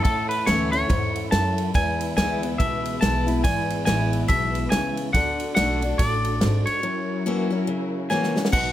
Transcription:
0.00 1.71 C#4 medium
0.00 1.71 E4 medium
0.00 5.11 E4 medium
0.00 1.71 A4 medium
0.00 1.72 A4 medium
0.00 0.29 A4 medium
0.00 1.71 C#5 medium
0.00 1.72 F#5 medium
0.05 0.46 E2 medium
0.05 0.87 A2 medium
0.05 kick loud
0.05 ride medium
0.29 0.47 B4 loud
0.29 ride medium
0.46 0.89 D2 loud
0.46 0.72 E3 medium
0.46 0.72 A3 medium
0.46 0.72 C#4 medium
0.46 0.71 E4 loud
0.46 0.71 C#5 loud
0.46 snare loud
0.46 ride medium
0.72 0.90 C#4 soft
0.72 0.89 E4 medium
0.72 1.28 C#5 loud
0.72 ride medium
0.89 1.31 E2 medium
0.89 1.31 G#2 medium
0.89 kick loud
0.89 ride medium
1.15 ride medium
1.31 1.73 F#2 medium
1.31 1.74 F#2 medium
1.31 1.71 A5 medium
1.31 snare loud
1.31 ride medium
1.58 ride medium
1.74 2.56 E2 medium
1.74 2.16 E2 medium
1.74 5.12 E3 medium
1.74 5.11 G#3 medium
1.74 5.12 G#3 medium
1.74 5.10 E4 medium
1.74 5.11 B4 medium
1.74 5.12 B4 medium
1.74 5.11 E5 medium
1.74 2.15 G#5 loud
1.74 kick loud
1.74 ride medium
2.01 ride medium
2.17 2.58 D2 medium
2.17 2.42 E3 medium
2.17 2.42 G#3 medium
2.17 2.42 B3 loud
2.17 2.42 E4 loud
2.17 2.61 G#5 loud
2.17 snare loud
2.17 ride medium
2.43 2.60 B3 medium
2.43 2.59 E4 medium
2.43 ride medium
2.58 3.01 C#2 medium
2.58 3.42 B2 medium
2.58 2.99 E5 loud
2.58 kick loud
2.58 ride medium
2.85 ride medium
3.01 3.44 B1 medium
3.01 3.26 E3 medium
3.01 3.27 G#3 medium
3.01 3.27 B3 medium
3.01 3.26 E4 medium
3.01 3.43 A5 loud
3.01 snare loud
3.01 ride medium
3.27 3.44 B3 soft
3.27 3.44 E4 medium
3.27 ride medium
3.44 3.86 G#1 medium
3.44 4.26 E2 loud
3.44 3.84 G#5 loud
3.44 kick loud
3.44 ride medium
3.70 ride medium
3.85 4.28 A1 loud
3.85 4.27 E3 medium
3.85 4.28 G#3 medium
3.85 4.28 B3 loud
3.85 4.28 E4 medium
3.85 4.28 G#5 loud
3.85 snare loud
3.85 ride medium
4.13 ride medium
4.28 4.71 B1 medium
4.28 4.70 B2 medium
4.28 4.70 E5 loud
4.28 kick loud
4.28 ride medium
4.55 ride medium
4.70 5.13 C#2 medium
4.70 5.13 C#3 medium
4.70 5.11 G#5 medium
4.70 snare loud
4.70 ride medium
4.97 ride medium
5.13 5.56 D2 medium
5.13 6.82 D3 medium
5.13 5.55 D3 loud
5.13 6.80 D4 medium
5.13 6.82 D4 medium
5.13 6.82 F#4 medium
5.13 6.81 F#4 medium
5.13 6.82 A4 medium
5.13 6.81 A4 medium
5.13 6.81 D5 medium
5.13 5.54 F#5 loud
5.13 kick loud
5.13 ride medium
5.40 ride medium
5.55 5.98 B1 medium
5.55 5.81 D3 medium
5.55 5.81 A3 medium
5.55 5.82 D4 medium
5.55 5.80 F#4 medium
5.55 6.00 F#5 medium
5.55 snare loud
5.55 ride medium
5.81 5.99 D4 soft
5.81 5.98 F#4 medium
5.81 ride medium
5.98 6.40 A1 medium
5.98 6.40 A2 medium
5.98 6.65 D5 medium
5.98 kick loud
5.98 ride medium
6.24 ride medium
6.41 6.66 G#1 loud
6.41 6.82 G#2 medium
6.41 snare loud
6.41 ride medium
6.66 8.07 C#5 medium
6.66 muted upright bass stroke soft
6.66 ride medium
6.82 7.65 F#2 medium
6.82 8.52 F#3 medium
6.82 8.52 C#4 medium
6.82 8.50 E4 medium
6.82 8.52 E4 medium
6.82 8.50 F#4 medium
6.82 8.50 A#4 medium
6.82 8.52 A#4 medium
6.82 8.50 C#5 medium
7.26 7.51 E3 medium
7.26 7.51 A#3 medium
7.26 7.51 C#4 loud
7.26 7.49 F#4 medium
7.50 7.68 C#4 medium
7.50 7.68 F#4 medium
7.67 8.50 C#3 medium
8.10 8.35 E3 medium
8.10 8.35 A#3 medium
8.10 8.36 C#4 loud
8.10 8.34 F#4 medium
8.10 8.52 G#5 medium
8.10 snare medium
8.23 snare medium
8.36 8.53 C#4 medium
8.36 8.53 F#4 medium
8.36 snare medium
8.45 snare medium
8.52 8.72 B1 medium
8.52 8.72 B2 medium
8.52 8.72 D#4 medium
8.52 8.72 F#4 medium
8.52 8.72 B4 medium
8.52 8.72 D#5 medium
8.52 8.72 F#5 loud
8.52 kick loud
8.52 crash loud

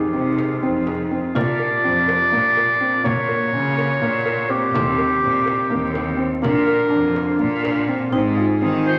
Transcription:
0.00 1.33 D#3 medium
0.00 1.33 G#3 medium
0.00 1.07 D#4 medium
0.00 1.33 F4 medium
0.00 1.08 G4 medium
0.13 0.56 C3 medium
0.13 0.33 C4 medium
0.13 frame drum soft
0.37 0.58 G#4 medium
0.37 frame drum soft
0.63 1.25 F2 medium
0.63 0.82 C4 medium
0.86 1.06 G#4 medium
0.86 frame drum soft
1.11 1.31 C4 medium
1.34 1.77 A#2 medium
1.34 3.03 C3 medium
1.34 1.55 A#3 medium
1.34 4.71 A#3 medium
1.34 3.03 D4 medium
1.34 3.10 F4 medium
1.34 3.06 D5 loud
1.34 frame drum medium
1.59 1.79 A#4 medium
1.84 2.25 F2 medium
1.84 2.04 C4 medium
2.08 2.28 A#4 medium
2.08 frame drum soft
2.32 2.94 A#2 medium
2.32 2.52 A#3 medium
2.57 2.76 A#4 medium
2.57 frame drum soft
2.80 3.00 C4 medium
3.03 3.46 A#2 medium
3.03 3.24 A#3 medium
3.03 4.79 A#3 medium
3.03 4.72 F4 medium
3.03 4.72 F#4 medium
3.03 4.52 C#5 medium
3.03 frame drum medium
3.29 3.48 A#4 medium
3.53 3.95 C#3 medium
3.53 3.73 C#4 medium
3.78 3.97 A#4 medium
3.78 frame drum soft
4.02 4.64 A#2 medium
4.02 4.21 A#3 medium
4.26 4.45 A#4 medium
4.26 frame drum soft
4.50 4.70 C4 medium
4.50 6.17 G4 medium
4.74 5.16 D#2 medium
4.74 6.26 D#3 medium
4.74 4.94 A#3 medium
4.74 6.26 C4 medium
4.74 6.49 C4 medium
4.74 6.26 G4 medium
4.74 frame drum medium
4.98 5.18 A#4 medium
5.22 5.64 A#2 medium
5.22 5.42 C4 medium
5.46 5.66 A#4 medium
5.46 frame drum soft
5.70 6.34 D#2 medium
5.70 5.90 A#3 medium
5.94 6.14 A#4 medium
5.94 frame drum soft
6.17 6.38 C4 medium
6.42 6.85 A#2 medium
6.42 8.11 D3 medium
6.42 6.62 A#3 medium
6.42 8.11 A#3 medium
6.42 7.85 D4 medium
6.42 8.11 F4 medium
6.42 7.61 A#4 loud
6.42 frame drum medium
6.67 6.87 A#4 medium
6.90 7.33 F2 medium
6.90 7.11 D4 medium
7.15 7.35 A#4 medium
7.15 frame drum soft
7.39 8.02 A#2 loud
7.39 7.59 A#3 medium
7.63 7.84 A#4 medium
7.63 frame drum soft
7.88 8.08 C4 medium
7.88 frame drum soft
8.12 8.54 G#2 medium
8.12 8.99 C3 medium
8.12 8.99 A#3 medium
8.12 8.32 C4 medium
8.12 8.99 D#4 medium
8.12 8.99 G#4 medium
8.37 8.57 F4 medium
8.61 8.99 D#3 medium
8.61 8.81 C4 medium
8.86 8.99 F4 medium
8.86 8.99 C5 loud

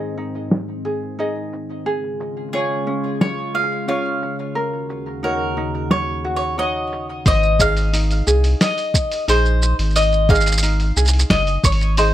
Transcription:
0.00 1.82 G#2 medium
0.00 1.82 D#3 medium
0.00 1.82 C4 medium
0.00 0.16 D#4 soft
0.00 0.84 G#4 medium
0.00 1.86 C5 medium
0.00 1.19 D#5 medium
0.00 shaker soft
0.17 1.17 D#4 medium
0.17 shaker medium
0.35 shaker soft
0.51 snare medium
0.51 shaker soft
0.69 shaker soft
0.85 1.19 G#4 medium
0.85 shaker medium
1.03 shaker soft
1.19 1.93 D#4 medium
1.19 1.86 G#4 medium
1.19 1.94 D#5 medium
1.19 shaker soft
1.36 shaker soft
1.53 shaker medium
1.70 shaker soft
1.86 4.53 C#3 medium
1.86 4.53 G#3 medium
1.86 4.53 F4 medium
1.86 4.55 G#4 medium
1.86 shaker soft
2.03 shaker soft
2.20 shaker medium
2.37 shaker soft
2.48 shaker soft
2.53 2.86 C#4 medium
2.53 3.53 F4 medium
2.53 3.23 G#4 medium
2.53 3.89 C#5 medium
2.59 shaker soft
2.87 3.87 C#4 medium
2.87 shaker medium
3.04 shaker soft
3.21 3.56 C#5 medium
3.21 snare medium
3.21 shaker soft
3.38 shaker soft
3.54 3.87 F4 medium
3.54 3.86 F5 medium
3.63 shaker medium
3.72 shaker soft
3.88 5.22 C#4 medium
3.88 4.63 F4 medium
3.88 5.24 C#5 medium
3.88 4.36 F5 medium
3.88 shaker soft
4.06 shaker soft
4.22 shaker medium
4.39 shaker soft
4.55 7.23 D#2 medium
4.55 7.23 C#3 medium
4.55 7.23 F#4 medium
4.55 7.25 A#4 medium
4.55 shaker soft
4.73 shaker soft
4.89 shaker medium
5.07 shaker soft
5.23 5.57 D#4 medium
5.23 6.23 F#4 medium
5.23 5.91 A#4 medium
5.23 6.58 C#5 medium
5.23 shaker soft
5.40 shaker soft
5.57 6.57 D#4 medium
5.57 shaker medium
5.74 shaker soft
5.91 6.35 C#5 medium
5.91 snare medium
5.91 shaker soft
6.24 6.57 F#4 medium
6.24 shaker medium
6.36 6.59 C#5 medium
6.41 shaker soft
6.58 7.59 D#4 medium
6.58 7.32 F#4 medium
6.58 7.33 C#5 medium
6.58 7.06 D#5 medium
6.58 shaker soft
6.75 shaker soft
6.92 shaker medium
7.09 shaker soft
7.26 8.22 G#1 loud
7.26 9.95 C5 medium
7.26 7.61 D#5 loud
7.26 kick loud
7.26 open hi-hat medium
7.26 shaker soft
7.43 shaker soft
7.59 7.92 D#4 medium
7.59 8.26 G#4 medium
7.59 9.28 D#5 medium
7.59 8.64 F5 loud
7.59 kick medium
7.59 shaker medium
7.77 open hi-hat soft
7.77 shaker soft
7.93 9.27 D#4 medium
7.93 open hi-hat medium
7.93 shaker soft
8.11 open hi-hat soft
8.11 shaker soft
8.27 8.55 C2 loud
8.27 9.28 G#4 medium
8.27 shaker medium
8.44 open hi-hat soft
8.44 shaker soft
8.61 9.24 D#5 loud
8.61 snare medium
8.61 open hi-hat medium
8.61 shaker soft
8.78 open hi-hat soft
8.78 shaker soft
8.94 kick loud
8.94 shaker medium
9.12 open hi-hat soft
9.12 shaker soft
9.28 9.74 A#1 loud
9.28 10.28 D#4 medium
9.28 10.29 G#4 medium
9.28 9.76 C5 loud
9.28 10.29 D#5 medium
9.28 open hi-hat medium
9.28 shaker medium
9.45 shaker soft
9.62 shaker medium
9.79 10.92 G#1 medium
9.79 open hi-hat soft
9.79 shaker soft
9.91 shaker soft
9.96 10.30 D#5 loud
9.96 open hi-hat medium
9.96 shaker soft
10.01 shaker soft
10.12 shaker soft
10.29 10.62 D#4 medium
10.29 10.96 G#4 medium
10.29 11.98 D#5 medium
10.29 11.34 F5 loud
10.29 kick loud
10.29 shaker soft
10.35 shaker soft
10.41 shaker soft
10.46 open hi-hat soft
10.46 shaker medium
10.52 shaker medium
10.58 shaker medium
10.63 11.96 D#4 medium
10.63 open hi-hat medium
10.63 shaker soft
10.80 open hi-hat soft
10.80 shaker soft
10.96 11.24 C2 loud
10.96 11.98 G#4 medium
10.96 shaker medium
11.05 shaker soft
11.08 shaker medium
11.13 open hi-hat soft
11.19 shaker medium
11.30 11.58 F#1 medium
11.30 11.64 D#5 loud
11.30 kick medium
11.30 snare medium
11.30 open hi-hat medium
11.30 shaker soft
11.47 open hi-hat soft
11.47 shaker soft
11.64 12.14 G#1 loud
11.64 11.97 C#5 medium
11.64 kick loud
11.64 shaker medium
11.72 open hi-hat soft
11.81 shaker soft
11.97 12.14 D#4 medium
11.97 12.14 G#4 medium
11.97 12.14 C5 medium
11.97 12.14 D#5 medium
11.97 open hi-hat medium
11.97 shaker soft

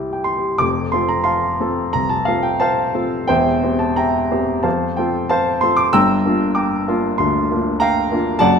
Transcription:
0.00 0.57 C2 soft
0.00 0.24 C4 medium
0.00 0.63 E4 soft
0.00 0.38 G4 soft
0.13 0.51 G5 soft
0.24 0.60 C6 medium
0.38 0.61 G4 soft
0.58 0.92 F1 medium
0.58 0.93 F2 medium
0.58 0.93 D6 medium
0.92 1.56 C4 soft
0.92 1.56 F4 soft
0.92 1.56 A4 soft
0.92 1.09 C6 medium
1.09 1.26 A#5 medium
1.24 1.89 F5 soft
1.24 1.89 A5 soft
1.24 1.93 C6 medium
1.60 1.91 C4 soft
1.60 1.91 F4 soft
1.60 1.91 A4 medium
1.93 2.27 C2 soft
1.93 2.10 A#5 medium
2.09 2.27 A5 medium
2.25 2.91 C4 soft
2.25 2.91 F4 soft
2.25 2.91 A4 soft
2.25 2.43 F5 medium
2.43 2.60 G5 medium
2.60 3.25 C5 medium
2.60 3.26 F5 medium
2.60 3.29 A5 medium
2.94 3.26 C4 soft
2.94 3.26 F4 soft
2.94 3.26 A4 soft
3.27 3.62 E1 medium
3.27 3.63 E2 medium
3.27 3.63 C5 medium
3.27 3.77 E5 medium
3.27 3.80 G5 medium
3.63 4.27 C4 soft
3.63 4.27 G4 soft
3.63 4.27 C5 soft
3.79 3.97 A5 medium
3.96 4.60 E5 medium
3.96 4.61 G5 medium
3.96 4.64 A#5 medium
4.31 4.61 C4 soft
4.31 4.61 G4 medium
4.31 4.62 C5 soft
4.63 4.97 F2 medium
4.63 4.95 C5 soft
4.63 4.95 F5 soft
4.63 4.97 A5 medium
4.97 5.58 C4 soft
4.97 5.58 F4 soft
4.97 5.59 A4 soft
4.97 5.30 G5 medium
5.29 5.60 C5 medium
5.29 5.60 F5 medium
5.29 5.62 A5 medium
5.61 5.91 C4 soft
5.61 5.91 F4 soft
5.61 5.91 A4 soft
5.61 5.77 C6 medium
5.77 5.93 D6 medium
5.93 6.25 G1 medium
5.93 6.25 G2 medium
5.93 6.53 G5 medium
5.93 6.53 A#5 medium
5.93 6.56 E6 loud
6.25 6.83 A#3 soft
6.25 6.83 D4 soft
6.25 6.84 F4 medium
6.55 7.14 G5 soft
6.55 7.15 A#5 soft
6.55 7.18 D6 medium
6.88 7.16 A#3 soft
6.88 7.16 D4 soft
6.88 7.16 F4 medium
7.18 7.50 D2 medium
7.18 7.82 C6 medium
7.51 8.09 A#3 soft
7.51 8.09 D4 soft
7.51 8.09 F4 soft
7.80 8.38 F5 medium
7.80 8.38 G5 medium
7.80 8.41 A#5 medium
8.12 8.39 A#3 soft
8.12 8.39 D4 soft
8.12 8.39 F4 medium
8.39 8.59 F#1 medium
8.39 8.59 F#2 medium
8.39 8.59 D5 medium
8.39 8.59 F#5 medium
8.39 8.59 A5 loud

